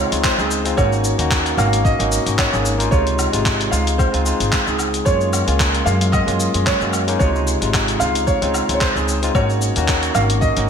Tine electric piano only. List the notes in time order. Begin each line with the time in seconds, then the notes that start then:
0.10 G#3 C4 D#4 F4
0.38 G#3 C4 D#4 G#4
0.64 G#3 C4 D#4 F4
0.77 A#3 C#4 D#4 F#4
1.18 A#3 C#4 D#4 F#4
1.57 A#3 C#4 D#4 F#4
1.99 A#3 C#4 D#4 F#4
2.26 A#3 C#4 D#4 F#4
2.52 A#3 C#4 D#4 G#4
2.78 A#3 C#4 D#4 F4
2.91 C3 G#3 D#4 F4
3.32 C3 G#3 D#4 F4
3.71 G#3 C4 D#4 F4
4.12 G#3 C4 D#4 F4
4.25 G#3 C4 D#4 F4
4.67 G#3 C4 D#4 G#4
5.05 G#3 A#3 C#4 F4
5.46 G#3 A#3 C#4 F4
5.85 G#3 A#3 C#4 F4
6.26 G#3 A#3 C#4 F4
6.53 G#3 A#3 C#4 F4
6.81 G#3 A#3 C#4 F#4
7.07 G#3 A#3 C#4 D#4
7.19 C3 G#3 D#4 F4
7.61 C3 G#3 D#4 F4
8.00 G#3 C4 D#4 F4
8.41 G#3 C4 D#4 F4
8.68 G#3 C4 D#4 F4
8.95 G#3 C4 D#4 G#4
9.22 G#3 C4 D#4 F4
9.34 A#3 C#4 D#4 F#4
9.76 A#3 C#4 D#4 F#4
10.15 A#3 C#4 D#4 F#4
10.56 A#3 C#4 D#4 F#4